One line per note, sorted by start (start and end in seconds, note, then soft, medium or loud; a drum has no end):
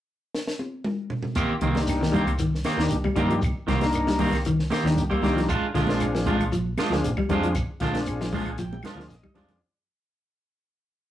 0.35 snare medium
0.47 snare medium
0.59 high tom medium
0.84 mid tom medium
1.10 floor tom medium
1.23 floor tom medium
1.35 1.49 C2 medium
1.35 1.52 D#3 medium
1.35 1.52 A#3 medium
1.35 1.52 C4 medium
1.35 1.53 G4 medium
1.35 kick medium
1.35 closed hi-hat medium
1.35 claves medium
1.35 shekere medium
1.50 muted fingered electric bass stroke soft
1.61 2.61 C2 medium
1.61 1.75 C3 medium
1.61 1.78 D#3 medium
1.61 1.78 A#3 medium
1.61 1.78 C4 medium
1.61 1.69 D#4 medium
1.61 1.69 G4 medium
1.61 kick medium
1.61 closed hi-hat medium
1.61 shekere soft
1.75 2.24 A#3 medium
1.75 2.24 D4 medium
1.75 2.24 D#4 medium
1.75 2.25 G4 medium
1.75 snare medium
1.75 high conga medium
1.87 snare soft
1.87 closed hi-hat medium
1.87 high conga medium
1.87 claves medium
1.87 shekere medium
2.01 2.08 D#3 medium
2.01 snare medium
2.01 high conga medium
2.12 2.29 D#3 medium
2.12 2.26 G3 medium
2.12 2.30 A#3 medium
2.12 2.30 C4 medium
2.12 2.30 G4 medium
2.12 kick medium
2.12 closed hi-hat medium
2.12 high conga medium
2.12 low conga medium
2.12 shekere soft
2.27 kick medium
2.27 closed hi-hat medium
2.27 claves medium
2.38 2.53 D#3 medium
2.38 closed hi-hat medium
2.38 shekere medium
2.55 snare soft
2.64 2.81 D#3 medium
2.64 2.81 A#3 medium
2.64 2.81 C4 medium
2.64 2.82 G4 medium
2.64 snare medium
2.64 closed hi-hat medium
2.64 high conga medium
2.64 claves medium
2.64 shekere soft
2.77 2.89 D#2 medium
2.77 2.92 D#3 medium
2.77 2.96 A#3 medium
2.77 2.96 D4 medium
2.77 2.97 D#4 medium
2.77 2.97 G4 medium
2.77 snare medium
2.88 3.03 C2 medium
2.88 closed hi-hat medium
2.88 high conga medium
2.88 shekere medium
3.04 3.11 G3 medium
3.04 kick medium
3.04 high conga medium
3.04 claves medium
3.16 3.43 G2 medium
3.16 3.33 D#3 medium
3.16 3.23 G3 medium
3.16 3.41 A#3 medium
3.16 3.33 A#3 medium
3.16 3.33 C4 medium
3.16 3.41 D4 medium
3.16 3.41 D#4 medium
3.16 3.41 G4 medium
3.16 3.33 G4 medium
3.16 kick medium
3.16 closed hi-hat medium
3.16 low conga medium
3.16 shekere soft
3.30 3.36 F3 medium
3.30 closed hi-hat soft
3.42 3.55 C2 medium
3.42 kick medium
3.42 closed hi-hat medium
3.42 claves medium
3.42 shekere medium
3.55 muted fingered electric bass stroke soft
3.67 4.68 C2 medium
3.67 3.81 C3 medium
3.67 3.84 D#3 medium
3.67 3.84 A#3 medium
3.67 3.84 C4 medium
3.67 3.74 D#4 medium
3.67 3.75 F4 medium
3.67 3.84 G4 medium
3.67 kick medium
3.67 snare soft
3.67 closed hi-hat soft
3.67 low conga medium
3.67 shekere soft
3.81 4.29 A#3 medium
3.81 4.30 D4 medium
3.81 4.30 D#4 medium
3.81 4.30 A#4 medium
3.81 snare medium
3.81 closed hi-hat soft
3.81 high conga medium
3.93 closed hi-hat medium
3.93 claves medium
3.93 shekere medium
4.07 4.14 G3 medium
4.07 snare medium
4.07 high conga medium
4.19 4.36 D#3 medium
4.19 4.33 G3 medium
4.19 4.36 A#3 medium
4.19 4.36 C4 medium
4.19 4.36 G4 medium
4.19 kick medium
4.19 open hi-hat medium
4.19 high conga medium
4.19 low conga medium
4.19 shekere soft
4.33 kick medium
4.33 snare soft
4.33 closed hi-hat soft
4.33 claves medium
4.45 4.60 D#3 medium
4.45 closed hi-hat medium
4.45 shekere medium
4.59 snare soft
4.70 4.87 D#3 medium
4.70 4.87 A#3 medium
4.70 4.88 C4 medium
4.70 4.88 G4 medium
4.70 snare medium
4.70 closed hi-hat soft
4.70 high conga medium
4.70 claves medium
4.70 shekere soft
4.84 4.95 D#2 medium
4.84 4.99 D#3 medium
4.84 5.03 A#3 medium
4.84 5.03 D4 medium
4.84 5.03 D#4 medium
4.84 5.04 G4 medium
4.84 snare medium
4.95 5.10 C2 medium
4.95 closed hi-hat medium
4.95 high conga medium
4.95 low conga medium
4.95 shekere medium
5.10 5.17 G3 medium
5.10 5.22 A#3 soft
5.10 5.22 C4 soft
5.10 5.23 G4 soft
5.10 kick medium
5.10 claves medium
5.22 5.49 C2 medium
5.22 5.39 D#3 medium
5.22 5.30 G3 medium
5.22 5.39 A#3 medium
5.22 5.48 A#3 medium
5.22 5.40 C4 medium
5.22 5.48 D4 medium
5.22 5.48 D#4 medium
5.22 5.40 G4 medium
5.22 5.48 G4 medium
5.22 kick medium
5.22 snare soft
5.22 closed hi-hat soft
5.22 low conga medium
5.22 shekere soft
5.36 5.43 F3 medium
5.36 snare soft
5.36 closed hi-hat soft
5.49 5.61 A#1 medium
5.49 5.65 G#3 medium
5.49 5.65 D4 medium
5.49 5.66 F4 medium
5.49 muted clean electric guitar stroke medium
5.49 kick medium
5.49 closed hi-hat medium
5.49 claves medium
5.49 shekere medium
5.61 muted fingered electric bass stroke soft
5.74 6.74 A#1 medium
5.74 5.88 D3 medium
5.74 5.89 F3 medium
5.74 5.89 G#3 medium
5.74 5.88 D4 medium
5.74 5.81 F4 medium
5.74 5.88 F4 medium
5.74 5.82 G#4 medium
5.74 kick medium
5.74 snare soft
5.74 closed hi-hat soft
5.74 shekere soft
5.87 6.05 G#3 soft
5.87 6.37 C4 medium
5.87 6.37 D4 medium
5.87 6.04 D4 soft
5.87 6.04 F4 soft
5.87 6.37 F4 medium
5.87 6.37 G#4 medium
5.87 snare medium
5.87 high conga medium
6.00 closed hi-hat medium
6.00 claves medium
6.00 shekere medium
6.15 6.21 F3 medium
6.15 snare medium
6.26 6.43 F3 medium
6.26 6.43 G#3 medium
6.26 6.40 G#3 medium
6.26 6.43 D4 medium
6.26 6.43 F4 medium
6.26 kick medium
6.26 closed hi-hat soft
6.26 high conga medium
6.26 low conga medium
6.26 shekere soft
6.40 kick medium
6.40 closed hi-hat soft
6.40 claves medium
6.52 6.66 F3 medium
6.52 closed hi-hat medium
6.52 shekere medium
6.78 6.94 F3 medium
6.78 6.95 G#3 medium
6.78 6.95 D4 medium
6.78 6.95 F4 medium
6.78 snare medium
6.78 closed hi-hat medium
6.78 high conga medium
6.78 claves medium
6.78 shekere soft
6.90 7.03 D2 medium
6.90 7.05 F3 medium
6.90 7.10 C4 medium
6.90 7.10 D4 medium
6.90 7.10 F4 medium
6.90 7.10 G#4 medium
6.90 snare medium
7.03 7.17 A#1 medium
7.03 closed hi-hat medium
7.03 high conga medium
7.03 shekere medium
7.17 7.24 G3 medium
7.17 kick medium
7.17 high conga medium
7.17 claves medium
7.29 7.57 F2 loud
7.29 7.46 F3 medium
7.29 7.37 G3 medium
7.29 7.47 G#3 medium
7.29 7.54 C4 medium
7.29 7.54 D4 medium
7.29 7.47 D4 medium
7.29 7.54 F4 medium
7.29 7.47 F4 medium
7.29 7.55 G#4 medium
7.29 kick medium
7.29 closed hi-hat medium
7.29 low conga medium
7.29 shekere soft
7.43 7.51 F3 medium
7.43 closed hi-hat soft
7.55 7.66 A#1 medium
7.55 kick medium
7.55 closed hi-hat medium
7.55 claves medium
7.55 shekere medium
7.67 muted fingered electric bass stroke soft
7.80 8.80 A#1 medium
7.80 7.95 D3 medium
7.80 7.98 F3 medium
7.80 7.98 G#3 medium
7.80 7.98 D4 medium
7.80 7.87 F4 medium
7.80 7.98 F4 medium
7.80 7.88 G#4 medium
7.80 kick medium
7.80 snare soft
7.80 closed hi-hat soft
7.80 shekere soft
7.93 8.42 C4 medium
7.93 8.43 D4 medium
7.93 8.43 F4 medium
7.93 8.42 G#4 medium
7.93 snare medium
7.93 closed hi-hat soft
7.93 high conga medium
8.06 closed hi-hat medium
8.06 high conga medium
8.06 claves medium
8.06 shekere medium
8.21 8.28 F3 medium
8.21 snare medium
8.32 8.49 F3 medium
8.32 8.46 G#3 medium
8.32 8.50 G#3 medium
8.32 8.50 D4 medium
8.32 8.50 F4 medium
8.32 8.58 G#5 medium
8.32 kick medium
8.32 open hi-hat medium
8.32 high conga medium
8.32 low conga medium
8.32 shekere soft
8.46 kick medium
8.46 closed hi-hat soft
8.46 claves medium
8.58 8.72 F3 medium
8.58 8.83 G5 medium
8.58 closed hi-hat medium
8.58 high conga medium
8.58 shekere medium
8.73 high conga medium
8.83 9.01 F3 medium
8.83 9.01 G#3 medium
8.83 9.01 D4 medium
8.83 9.02 F4 medium
8.83 9.08 F5 medium
8.83 snare medium
8.83 closed hi-hat soft
8.83 low conga medium
8.83 claves medium
8.83 shekere soft
8.95 9.08 D2 medium
8.95 9.11 F3 medium
8.95 9.14 C4 medium
8.95 9.15 D4 medium
8.95 9.15 F4 medium
8.95 9.15 G#4 medium
9.00 snare medium
9.08 9.22 A#1 medium
9.08 9.33 D#5 medium
9.08 closed hi-hat medium
9.08 shekere medium
9.12 snare soft
9.23 9.30 G3 medium
9.23 kick medium
9.23 low conga medium
9.23 claves medium
9.34 9.60 F2 medium
9.34 9.52 F3 medium
9.34 9.43 G3 medium
9.34 9.52 G#3 medium
9.34 9.59 C4 medium
9.34 9.60 D4 medium
9.34 9.52 D4 medium
9.34 9.60 F4 medium
9.34 9.53 F4 medium
9.34 9.60 G#4 medium
9.34 9.60 D5 medium
9.34 kick medium
9.34 snare soft
9.34 closed hi-hat soft
9.34 low conga medium
9.34 shekere soft
9.48 9.55 F3 medium
9.48 snare soft
9.48 closed hi-hat soft
9.48 low conga medium